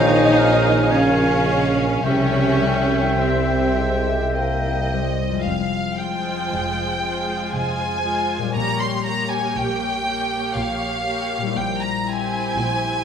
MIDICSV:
0, 0, Header, 1, 13, 480
1, 0, Start_track
1, 0, Key_signature, -4, "minor"
1, 0, Tempo, 1065719
1, 413, Tempo, 1119403
1, 893, Time_signature, 3, 2, 24, 8
1, 893, Tempo, 1162791
1, 1853, Tempo, 1107011
1, 2333, Tempo, 1023891
1, 4253, Tempo, 998336
1, 5924, End_track
2, 0, Start_track
2, 0, Title_t, "Flute section"
2, 0, Program_c, 0, 73
2, 0, Note_on_c, 0, 80, 62
2, 897, Note_off_c, 0, 80, 0
2, 900, Note_on_c, 0, 79, 53
2, 2174, Note_off_c, 0, 79, 0
2, 5924, End_track
3, 0, Start_track
3, 0, Title_t, "Oboe"
3, 0, Program_c, 1, 68
3, 0, Note_on_c, 1, 79, 59
3, 173, Note_on_c, 1, 77, 52
3, 180, Note_off_c, 1, 79, 0
3, 410, Note_on_c, 1, 80, 48
3, 417, Note_off_c, 1, 77, 0
3, 758, Note_off_c, 1, 80, 0
3, 891, Note_on_c, 1, 79, 50
3, 2170, Note_off_c, 1, 79, 0
3, 5924, End_track
4, 0, Start_track
4, 0, Title_t, "Violin section"
4, 0, Program_c, 2, 48
4, 0, Note_on_c, 2, 77, 72
4, 406, Note_off_c, 2, 77, 0
4, 411, Note_on_c, 2, 77, 52
4, 883, Note_off_c, 2, 77, 0
4, 889, Note_on_c, 2, 76, 54
4, 1356, Note_off_c, 2, 76, 0
4, 1361, Note_on_c, 2, 76, 55
4, 1842, Note_off_c, 2, 76, 0
4, 1851, Note_on_c, 2, 75, 62
4, 2315, Note_off_c, 2, 75, 0
4, 2328, Note_on_c, 2, 77, 59
4, 2575, Note_off_c, 2, 77, 0
4, 2578, Note_on_c, 2, 79, 64
4, 3302, Note_off_c, 2, 79, 0
4, 3306, Note_on_c, 2, 80, 67
4, 3781, Note_off_c, 2, 80, 0
4, 3781, Note_on_c, 2, 82, 71
4, 3896, Note_off_c, 2, 82, 0
4, 3896, Note_on_c, 2, 84, 63
4, 4014, Note_on_c, 2, 82, 66
4, 4016, Note_off_c, 2, 84, 0
4, 4132, Note_off_c, 2, 82, 0
4, 4132, Note_on_c, 2, 80, 61
4, 4253, Note_off_c, 2, 80, 0
4, 4254, Note_on_c, 2, 79, 69
4, 4738, Note_off_c, 2, 79, 0
4, 4740, Note_on_c, 2, 77, 72
4, 5214, Note_off_c, 2, 77, 0
4, 5218, Note_on_c, 2, 79, 64
4, 5336, Note_off_c, 2, 79, 0
4, 5338, Note_on_c, 2, 82, 69
4, 5457, Note_off_c, 2, 82, 0
4, 5461, Note_on_c, 2, 80, 70
4, 5924, Note_off_c, 2, 80, 0
4, 5924, End_track
5, 0, Start_track
5, 0, Title_t, "Clarinet"
5, 0, Program_c, 3, 71
5, 0, Note_on_c, 3, 73, 71
5, 417, Note_on_c, 3, 77, 53
5, 423, Note_off_c, 3, 73, 0
5, 895, Note_off_c, 3, 77, 0
5, 898, Note_on_c, 3, 76, 51
5, 2174, Note_off_c, 3, 76, 0
5, 5924, End_track
6, 0, Start_track
6, 0, Title_t, "Violin section"
6, 0, Program_c, 4, 48
6, 0, Note_on_c, 4, 75, 70
6, 409, Note_on_c, 4, 73, 64
6, 413, Note_off_c, 4, 75, 0
6, 884, Note_off_c, 4, 73, 0
6, 889, Note_on_c, 4, 73, 61
6, 1352, Note_off_c, 4, 73, 0
6, 1362, Note_on_c, 4, 72, 50
6, 1853, Note_off_c, 4, 72, 0
6, 2574, Note_on_c, 4, 68, 44
6, 2575, Note_on_c, 4, 72, 44
6, 3050, Note_off_c, 4, 68, 0
6, 3051, Note_off_c, 4, 72, 0
6, 3059, Note_on_c, 4, 68, 45
6, 3061, Note_on_c, 4, 72, 44
6, 3530, Note_off_c, 4, 68, 0
6, 3531, Note_off_c, 4, 72, 0
6, 3544, Note_on_c, 4, 68, 42
6, 3544, Note_on_c, 4, 72, 43
6, 3770, Note_on_c, 4, 67, 41
6, 3772, Note_on_c, 4, 73, 43
6, 3776, Note_off_c, 4, 68, 0
6, 3776, Note_off_c, 4, 72, 0
6, 4004, Note_off_c, 4, 73, 0
6, 4006, Note_off_c, 4, 67, 0
6, 4010, Note_on_c, 4, 73, 46
6, 4011, Note_on_c, 4, 67, 46
6, 4482, Note_off_c, 4, 73, 0
6, 4485, Note_off_c, 4, 67, 0
6, 4488, Note_on_c, 4, 73, 47
6, 4490, Note_on_c, 4, 67, 43
6, 4961, Note_off_c, 4, 73, 0
6, 4962, Note_off_c, 4, 67, 0
6, 4969, Note_on_c, 4, 73, 46
6, 4970, Note_on_c, 4, 67, 43
6, 5206, Note_off_c, 4, 67, 0
6, 5206, Note_off_c, 4, 73, 0
6, 5446, Note_on_c, 4, 72, 50
6, 5449, Note_on_c, 4, 67, 51
6, 5922, Note_off_c, 4, 72, 0
6, 5923, Note_off_c, 4, 67, 0
6, 5924, End_track
7, 0, Start_track
7, 0, Title_t, "Harp"
7, 0, Program_c, 5, 46
7, 0, Note_on_c, 5, 46, 63
7, 0, Note_on_c, 5, 53, 45
7, 0, Note_on_c, 5, 58, 47
7, 0, Note_on_c, 5, 65, 47
7, 0, Note_on_c, 5, 73, 46
7, 49, Note_on_c, 5, 70, 45
7, 170, Note_on_c, 5, 77, 48
7, 283, Note_off_c, 5, 70, 0
7, 289, Note_on_c, 5, 70, 47
7, 407, Note_off_c, 5, 73, 0
7, 413, Note_on_c, 5, 73, 45
7, 523, Note_off_c, 5, 65, 0
7, 528, Note_on_c, 5, 65, 45
7, 643, Note_off_c, 5, 58, 0
7, 648, Note_on_c, 5, 58, 39
7, 764, Note_off_c, 5, 53, 0
7, 770, Note_on_c, 5, 53, 38
7, 889, Note_on_c, 5, 48, 54
7, 910, Note_off_c, 5, 46, 0
7, 910, Note_off_c, 5, 65, 0
7, 911, Note_off_c, 5, 53, 0
7, 911, Note_off_c, 5, 58, 0
7, 911, Note_off_c, 5, 70, 0
7, 911, Note_off_c, 5, 77, 0
7, 912, Note_off_c, 5, 73, 0
7, 1009, Note_on_c, 5, 60, 36
7, 1128, Note_on_c, 5, 55, 37
7, 1243, Note_on_c, 5, 64, 41
7, 1363, Note_on_c, 5, 72, 41
7, 1483, Note_on_c, 5, 67, 40
7, 1609, Note_on_c, 5, 76, 43
7, 1726, Note_off_c, 5, 67, 0
7, 1731, Note_on_c, 5, 67, 38
7, 1851, Note_off_c, 5, 72, 0
7, 1857, Note_on_c, 5, 72, 44
7, 1974, Note_off_c, 5, 64, 0
7, 1980, Note_on_c, 5, 64, 39
7, 2094, Note_off_c, 5, 55, 0
7, 2099, Note_on_c, 5, 55, 39
7, 2216, Note_off_c, 5, 60, 0
7, 2221, Note_on_c, 5, 60, 32
7, 2258, Note_on_c, 5, 41, 44
7, 2277, Note_on_c, 5, 56, 38
7, 2297, Note_on_c, 5, 65, 36
7, 2310, Note_off_c, 5, 72, 0
7, 2315, Note_on_c, 5, 72, 35
7, 2351, Note_off_c, 5, 48, 0
7, 2352, Note_off_c, 5, 67, 0
7, 2353, Note_off_c, 5, 55, 0
7, 2353, Note_off_c, 5, 76, 0
7, 2354, Note_off_c, 5, 64, 0
7, 3696, Note_on_c, 5, 46, 44
7, 3717, Note_on_c, 5, 55, 36
7, 3738, Note_on_c, 5, 67, 36
7, 3757, Note_off_c, 5, 41, 0
7, 3759, Note_on_c, 5, 73, 37
7, 3768, Note_off_c, 5, 56, 0
7, 3778, Note_off_c, 5, 65, 0
7, 3788, Note_off_c, 5, 72, 0
7, 3799, Note_off_c, 5, 60, 0
7, 5119, Note_off_c, 5, 46, 0
7, 5125, Note_on_c, 5, 46, 45
7, 5141, Note_off_c, 5, 55, 0
7, 5147, Note_on_c, 5, 55, 40
7, 5166, Note_on_c, 5, 64, 39
7, 5189, Note_on_c, 5, 72, 41
7, 5222, Note_off_c, 5, 73, 0
7, 5600, Note_off_c, 5, 67, 0
7, 5924, Note_off_c, 5, 46, 0
7, 5924, Note_off_c, 5, 55, 0
7, 5924, Note_off_c, 5, 64, 0
7, 5924, Note_off_c, 5, 72, 0
7, 5924, End_track
8, 0, Start_track
8, 0, Title_t, "French horn section"
8, 0, Program_c, 6, 60
8, 0, Note_on_c, 6, 63, 65
8, 401, Note_off_c, 6, 63, 0
8, 403, Note_on_c, 6, 61, 68
8, 818, Note_off_c, 6, 61, 0
8, 891, Note_on_c, 6, 61, 64
8, 1353, Note_off_c, 6, 61, 0
8, 1367, Note_on_c, 6, 60, 46
8, 1855, Note_off_c, 6, 60, 0
8, 5924, End_track
9, 0, Start_track
9, 0, Title_t, "Viola section"
9, 0, Program_c, 7, 48
9, 0, Note_on_c, 7, 63, 87
9, 408, Note_on_c, 7, 61, 72
9, 411, Note_off_c, 7, 63, 0
9, 885, Note_off_c, 7, 61, 0
9, 890, Note_on_c, 7, 61, 77
9, 1352, Note_off_c, 7, 61, 0
9, 1359, Note_on_c, 7, 60, 56
9, 1851, Note_off_c, 7, 60, 0
9, 2574, Note_on_c, 7, 65, 44
9, 2577, Note_on_c, 7, 56, 44
9, 3050, Note_off_c, 7, 65, 0
9, 3052, Note_off_c, 7, 56, 0
9, 3059, Note_on_c, 7, 56, 47
9, 3061, Note_on_c, 7, 65, 44
9, 3530, Note_off_c, 7, 56, 0
9, 3531, Note_off_c, 7, 65, 0
9, 3538, Note_on_c, 7, 56, 43
9, 3538, Note_on_c, 7, 65, 43
9, 3773, Note_off_c, 7, 56, 0
9, 3773, Note_off_c, 7, 65, 0
9, 3777, Note_on_c, 7, 67, 41
9, 3779, Note_on_c, 7, 58, 40
9, 4009, Note_off_c, 7, 67, 0
9, 4010, Note_off_c, 7, 58, 0
9, 4015, Note_on_c, 7, 67, 44
9, 4016, Note_on_c, 7, 58, 46
9, 4487, Note_off_c, 7, 67, 0
9, 4488, Note_off_c, 7, 58, 0
9, 4495, Note_on_c, 7, 58, 45
9, 4496, Note_on_c, 7, 67, 45
9, 4965, Note_off_c, 7, 58, 0
9, 4965, Note_off_c, 7, 67, 0
9, 4973, Note_on_c, 7, 67, 41
9, 4974, Note_on_c, 7, 58, 45
9, 5208, Note_off_c, 7, 58, 0
9, 5208, Note_off_c, 7, 67, 0
9, 5446, Note_on_c, 7, 64, 49
9, 5448, Note_on_c, 7, 60, 49
9, 5922, Note_off_c, 7, 64, 0
9, 5923, Note_off_c, 7, 60, 0
9, 5924, End_track
10, 0, Start_track
10, 0, Title_t, "Bassoon"
10, 0, Program_c, 8, 70
10, 0, Note_on_c, 8, 60, 65
10, 415, Note_on_c, 8, 58, 56
10, 422, Note_off_c, 8, 60, 0
10, 647, Note_on_c, 8, 56, 53
10, 654, Note_off_c, 8, 58, 0
10, 806, Note_off_c, 8, 56, 0
10, 893, Note_on_c, 8, 55, 53
10, 1299, Note_off_c, 8, 55, 0
10, 1366, Note_on_c, 8, 55, 57
10, 1612, Note_on_c, 8, 56, 58
10, 1618, Note_off_c, 8, 55, 0
10, 1855, Note_on_c, 8, 58, 59
10, 1861, Note_off_c, 8, 56, 0
10, 2102, Note_on_c, 8, 60, 52
10, 2108, Note_off_c, 8, 58, 0
10, 2335, Note_off_c, 8, 60, 0
10, 5924, End_track
11, 0, Start_track
11, 0, Title_t, "Cello section"
11, 0, Program_c, 10, 48
11, 0, Note_on_c, 10, 51, 69
11, 413, Note_off_c, 10, 51, 0
11, 413, Note_on_c, 10, 49, 59
11, 883, Note_off_c, 10, 49, 0
11, 893, Note_on_c, 10, 49, 63
11, 1354, Note_off_c, 10, 49, 0
11, 1364, Note_on_c, 10, 48, 50
11, 1854, Note_off_c, 10, 48, 0
11, 2332, Note_on_c, 10, 41, 54
11, 2752, Note_off_c, 10, 41, 0
11, 2818, Note_on_c, 10, 41, 59
11, 3234, Note_off_c, 10, 41, 0
11, 3301, Note_on_c, 10, 41, 53
11, 3712, Note_off_c, 10, 41, 0
11, 3781, Note_on_c, 10, 46, 62
11, 4189, Note_off_c, 10, 46, 0
11, 4253, Note_on_c, 10, 46, 54
11, 4670, Note_off_c, 10, 46, 0
11, 4738, Note_on_c, 10, 46, 58
11, 5146, Note_off_c, 10, 46, 0
11, 5215, Note_on_c, 10, 46, 57
11, 5630, Note_off_c, 10, 46, 0
11, 5700, Note_on_c, 10, 46, 64
11, 5924, Note_off_c, 10, 46, 0
11, 5924, End_track
12, 0, Start_track
12, 0, Title_t, "Tuba"
12, 0, Program_c, 11, 58
12, 0, Note_on_c, 11, 34, 67
12, 877, Note_off_c, 11, 34, 0
12, 897, Note_on_c, 11, 36, 54
12, 2228, Note_off_c, 11, 36, 0
12, 5924, End_track
13, 0, Start_track
13, 0, Title_t, "Double bass section"
13, 0, Program_c, 12, 48
13, 0, Note_on_c, 12, 34, 68
13, 875, Note_off_c, 12, 34, 0
13, 895, Note_on_c, 12, 36, 53
13, 2227, Note_off_c, 12, 36, 0
13, 2335, Note_on_c, 12, 29, 55
13, 2754, Note_off_c, 12, 29, 0
13, 2826, Note_on_c, 12, 29, 52
13, 3238, Note_off_c, 12, 29, 0
13, 3306, Note_on_c, 12, 29, 52
13, 3715, Note_off_c, 12, 29, 0
13, 3782, Note_on_c, 12, 34, 53
13, 4190, Note_off_c, 12, 34, 0
13, 4258, Note_on_c, 12, 34, 51
13, 4673, Note_off_c, 12, 34, 0
13, 4738, Note_on_c, 12, 34, 59
13, 5146, Note_off_c, 12, 34, 0
13, 5215, Note_on_c, 12, 34, 59
13, 5630, Note_off_c, 12, 34, 0
13, 5691, Note_on_c, 12, 34, 60
13, 5924, Note_off_c, 12, 34, 0
13, 5924, End_track
0, 0, End_of_file